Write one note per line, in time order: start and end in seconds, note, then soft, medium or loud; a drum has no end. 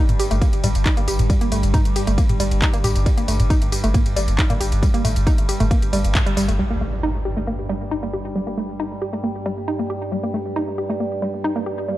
0.00 6.58 G2 medium
0.00 6.58 G3 medium
0.09 0.19 G1 medium
0.09 closed hi-hat medium
0.09 mid tom medium
0.09 ride medium
0.09 tambourine soft
0.20 0.25 G4 medium
0.20 open hi-hat loud
0.20 ride medium
0.20 tambourine medium
0.31 0.41 G1 medium
0.31 0.34 A3 medium
0.31 closed hi-hat medium
0.31 ride medium
0.31 tambourine soft
0.41 0.47 A#3 medium
0.41 kick loud
0.41 closed hi-hat medium
0.41 ride medium
0.41 tambourine soft
0.53 0.63 G1 medium
0.53 closed hi-hat medium
0.53 ride medium
0.53 tambourine soft
0.64 0.74 G1 loud
0.64 0.67 G3 loud
0.64 mid tom medium
0.64 open hi-hat loud
0.64 ride medium
0.64 tambourine medium
0.75 0.85 G1 medium
0.75 closed hi-hat medium
0.75 ride medium
0.75 tambourine soft
0.86 0.91 D#4 loud
0.86 kick loud
0.86 clap loud
0.86 closed hi-hat medium
0.86 ride medium
0.86 tambourine soft
0.97 1.07 G1 medium
0.97 1.00 A#3 medium
0.97 closed hi-hat medium
0.97 ride medium
0.97 tambourine soft
1.08 1.18 G1 loud
1.08 1.13 G4 medium
1.08 open hi-hat loud
1.08 ride medium
1.08 tambourine medium
1.19 1.30 G1 medium
1.19 closed hi-hat medium
1.19 mid tom medium
1.19 ride medium
1.19 tambourine soft
1.30 1.35 G3 medium
1.30 kick loud
1.30 closed hi-hat medium
1.30 ride medium
1.30 tambourine soft
1.41 1.51 G1 medium
1.41 1.49 A#3 medium
1.41 closed hi-hat medium
1.41 ride medium
1.41 tambourine soft
1.52 1.63 G1 loud
1.52 1.60 A3 medium
1.52 open hi-hat loud
1.52 ride medium
1.52 tambourine medium
1.63 1.74 G1 medium
1.63 closed hi-hat medium
1.63 ride medium
1.63 tambourine soft
1.74 1.79 D#4 loud
1.74 kick loud
1.74 closed hi-hat medium
1.74 mid tom medium
1.74 ride medium
1.74 tambourine soft
1.85 1.96 G1 medium
1.85 closed hi-hat medium
1.85 ride medium
1.85 tambourine soft
1.96 2.01 G4 medium
1.96 open hi-hat loud
1.96 ride medium
1.96 tambourine medium
2.07 2.18 G1 medium
2.07 2.10 A3 medium
2.07 closed hi-hat medium
2.07 ride medium
2.07 tambourine soft
2.18 2.23 A#3 medium
2.18 kick loud
2.18 closed hi-hat medium
2.18 ride medium
2.18 tambourine soft
2.29 2.39 G1 medium
2.29 closed hi-hat medium
2.29 mid tom medium
2.29 ride medium
2.29 tambourine soft
2.40 2.51 G1 loud
2.40 2.43 G3 loud
2.40 open hi-hat loud
2.40 ride medium
2.40 tambourine medium
2.51 2.62 G1 medium
2.51 closed hi-hat medium
2.51 ride medium
2.51 tambourine soft
2.62 2.67 D#4 loud
2.62 kick loud
2.62 clap loud
2.62 closed hi-hat medium
2.62 ride medium
2.62 tambourine soft
2.73 2.84 G1 medium
2.73 2.76 A#3 medium
2.73 closed hi-hat medium
2.73 ride medium
2.73 tambourine soft
2.84 2.95 G1 loud
2.84 2.89 G4 medium
2.84 mid tom medium
2.84 open hi-hat loud
2.84 ride medium
2.84 tambourine medium
2.96 3.06 G1 medium
2.96 closed hi-hat medium
2.96 ride medium
2.96 tambourine soft
3.06 3.12 G3 medium
3.06 kick loud
3.06 closed hi-hat medium
3.06 ride medium
3.06 tambourine soft
3.18 3.28 G1 medium
3.18 3.25 A#3 medium
3.18 closed hi-hat medium
3.18 ride medium
3.18 tambourine soft
3.28 3.39 G1 loud
3.28 3.36 A3 medium
3.28 open hi-hat loud
3.28 ride medium
3.28 tambourine medium
3.40 3.50 G1 medium
3.40 closed hi-hat medium
3.40 mid tom medium
3.40 ride medium
3.40 tambourine soft
3.50 3.56 D#4 loud
3.50 kick loud
3.50 closed hi-hat medium
3.50 ride medium
3.50 tambourine soft
3.62 3.72 G1 medium
3.62 closed hi-hat medium
3.62 ride medium
3.62 tambourine soft
3.72 3.78 G4 medium
3.72 open hi-hat loud
3.72 ride medium
3.72 tambourine medium
3.84 3.94 G1 medium
3.84 3.87 A3 medium
3.84 closed hi-hat medium
3.84 ride medium
3.84 tambourine soft
3.94 4.00 A#3 medium
3.94 kick loud
3.94 closed hi-hat medium
3.94 mid tom medium
3.94 ride medium
3.94 tambourine soft
4.06 4.16 G1 medium
4.06 closed hi-hat medium
4.06 ride medium
4.06 tambourine soft
4.16 4.27 G1 loud
4.16 4.20 G3 loud
4.16 open hi-hat loud
4.16 ride medium
4.16 tambourine medium
4.28 4.38 G1 medium
4.28 closed hi-hat medium
4.28 ride medium
4.28 tambourine soft
4.38 4.44 D#4 loud
4.38 kick loud
4.38 clap loud
4.38 closed hi-hat medium
4.38 ride medium
4.38 tambourine soft
4.50 4.60 G1 medium
4.50 4.53 A#3 medium
4.50 closed hi-hat medium
4.50 mid tom medium
4.50 ride medium
4.50 tambourine soft
4.61 4.71 G1 loud
4.61 4.66 G4 medium
4.61 open hi-hat loud
4.61 ride medium
4.61 tambourine medium
4.72 4.82 G1 medium
4.72 closed hi-hat medium
4.72 ride medium
4.72 tambourine soft
4.83 4.88 G3 medium
4.83 kick loud
4.83 closed hi-hat medium
4.83 ride medium
4.83 tambourine soft
4.94 5.04 G1 medium
4.94 5.01 A#3 medium
4.94 closed hi-hat medium
4.94 ride medium
4.94 tambourine soft
5.05 5.15 G1 loud
5.05 5.13 A3 medium
5.05 mid tom medium
5.05 open hi-hat loud
5.05 ride medium
5.05 tambourine medium
5.16 5.27 G1 medium
5.16 closed hi-hat medium
5.16 ride medium
5.16 tambourine soft
5.27 5.32 D#4 loud
5.27 kick loud
5.27 closed hi-hat medium
5.27 ride medium
5.27 tambourine soft
5.38 5.49 G1 medium
5.38 closed hi-hat medium
5.38 ride medium
5.38 tambourine soft
5.49 5.54 G4 medium
5.49 open hi-hat loud
5.49 ride medium
5.49 tambourine medium
5.60 5.71 G1 medium
5.60 5.63 A3 medium
5.60 closed hi-hat medium
5.60 mid tom medium
5.60 ride medium
5.60 tambourine soft
5.71 5.76 A#3 medium
5.71 kick loud
5.71 closed hi-hat medium
5.71 ride medium
5.71 tambourine soft
5.82 5.92 G1 medium
5.82 closed hi-hat medium
5.82 ride medium
5.82 tambourine soft
5.93 6.04 G1 loud
5.93 5.98 G3 loud
5.93 open hi-hat loud
5.93 ride medium
5.93 tambourine medium
6.04 6.15 G1 medium
6.04 closed hi-hat medium
6.04 ride medium
6.04 tambourine soft
6.15 6.20 A3 medium
6.15 kick loud
6.15 clap loud
6.15 closed hi-hat medium
6.15 mid tom medium
6.15 ride medium
6.15 tambourine soft
6.26 6.36 G1 medium
6.26 6.29 G3 loud
6.26 closed hi-hat medium
6.26 ride medium
6.26 tambourine soft
6.37 6.48 G1 loud
6.37 6.45 G3 loud
6.37 open hi-hat loud
6.37 ride medium
6.37 tambourine medium
6.48 6.59 G1 medium
6.48 6.53 A3 medium
6.48 closed hi-hat medium
6.48 ride medium
6.48 tambourine soft
6.59 11.98 G2 medium
6.59 11.98 G3 medium
6.59 6.64 G3 medium
6.59 impact medium
6.70 6.78 A#3 medium
6.81 6.89 A3 medium
7.03 7.09 D#4 loud
7.25 7.31 G4 medium
7.37 7.40 A3 medium
7.47 7.53 A#3 medium
7.69 7.73 G3 loud
7.91 7.97 D#4 loud
8.03 8.06 A#3 medium
8.13 8.19 G4 medium
8.36 8.41 G3 medium
8.47 8.54 A#3 medium
8.58 8.66 A3 medium
8.80 8.85 D#4 loud
9.02 9.07 G4 medium
9.13 9.16 A3 medium
9.24 9.29 A#3 medium
9.46 9.49 G3 loud
9.68 9.73 D#4 loud
9.79 9.82 A#3 medium
9.90 9.95 G4 medium
10.12 10.17 G3 medium
10.23 10.31 A#3 medium
10.34 10.42 A3 medium
10.56 10.62 D#4 loud
10.78 10.84 G4 medium
10.90 10.93 A3 medium
11.00 11.06 A#3 medium
11.22 11.26 G3 loud
11.44 11.50 D#4 loud
11.56 11.59 A#3 medium
11.66 11.72 G4 medium
11.88 11.94 G3 medium